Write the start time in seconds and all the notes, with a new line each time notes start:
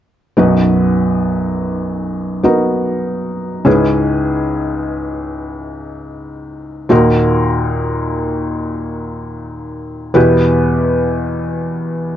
0.37 B1 F#2 B3 D#4 F#4 B4
2.43 B3 D#4 F#4 A#4
3.65 C#2 G#2 C#4 E4 G#4 B4
6.89 D#2 A#2 A#3 D#4 F#4 A#4
10.14 E2 B2 B3 E4 G4 B4